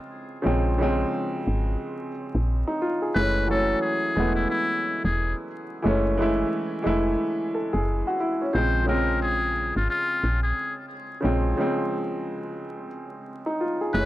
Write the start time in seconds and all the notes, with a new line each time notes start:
Already playing: C#3 F3 G#3 C4
0.42 C#3 F3 G#3
0.46 A#1 C4
0.78 C#3 F3 G#3
0.83 C4
1.47 G#1
2.35 A#1
2.68 D#4
2.82 F4
3.02 G#4
3.14 F#1 E3 G#3 A3 B4
3.19 C#4
3.46 E3 F#3 A3
3.51 C#4 A4
3.81 G#4
4.15 E1 E3 G#3 A3
4.20 B3
4.35 E4
4.50 E4
5.04 E1 G#4
5.82 F#1 E3 G#3 A3
5.87 C#4
6.18 E3 G#3 A3
6.22 E4
6.82 F1 E3 G#3 A3
6.87 E4
7.54 A4
7.73 F#1 G#4
8.07 F#4
8.20 E4
8.42 C#4
8.53 A#1 C#3 F3 G#3 C5
8.58 C4
8.84 C#3 F3 G#3
8.89 C4 A#4
9.22 G#4
9.76 G#1 F4
9.90 F4
10.24 A#1
10.43 G#4
11.20 C#3 F3 G#3
11.25 A#1 C4
11.57 C#3 F3 G#3
11.61 C4
13.46 D#4
13.61 F4
13.81 G#4
13.93 F#1 E3 G#3 A3 B4
13.98 C#4